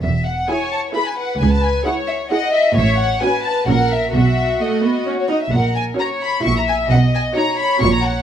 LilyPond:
<<
  \new Staff \with { instrumentName = "Violin section" } { \time 3/4 \key e \major \tempo 4 = 131 e''8 fis''8 gis''8 a''8 b''16 gis''16 fis''8 | gis''16 a''16 gis''8 fis''8 e''8 fis''8 e''8 | e''8 fis''8 gis''8 a''8 fis''8 e''8 | e''4 dis''4 r16 cis''16 dis''16 e''16 |
\key b \major fis''8 gis''8 ais''8 b''8 cis'''16 ais''16 gis''8 | fis''8 gis''8 ais''8 b''8 cis'''16 ais''16 fis''8 | }
  \new Staff \with { instrumentName = "Violin section" } { \time 3/4 \key e \major r4 cis''4 b'4~ | b'4 cis''4 dis''4 | cis''4 b'4 ais'4 | fis'2~ fis'8 r8 |
\key b \major ais'4 cis''4 e''4 | dis''4 cis''2 | }
  \new Staff \with { instrumentName = "Viola section" } { \time 3/4 \key e \major r4 <e' gis'>4 <e' gis'>4 | r4 <e' gis'>4 <e' gis'>4 | r4 <cis' fis'>4 <cis' fis'>4 | r4 a8 b8 cis'8 dis'8 |
\key b \major r4 <cis' fis'>4 <e' fis'>4 | r4 <dis' fis'>4 <cis' fis'>4 | }
  \new Staff \with { instrumentName = "Cello section" } { \clef bass \time 3/4 \key e \major e,4 r2 | cis,4 r2 | a,4 r4 ais,4 | b,4 r2 |
\key b \major ais,4 r4 ais,4 | b,4 r4 ais,4 | }
  \new Staff \with { instrumentName = "Double bass section" } { \clef bass \time 3/4 \key e \major e,,4 r2 | cis,4 r2 | a,,4 r4 ais,,4 | b,,4 r2 |
\key b \major ais,,4 r4 ais,,4 | b,,4 r4 ais,,4 | }
>>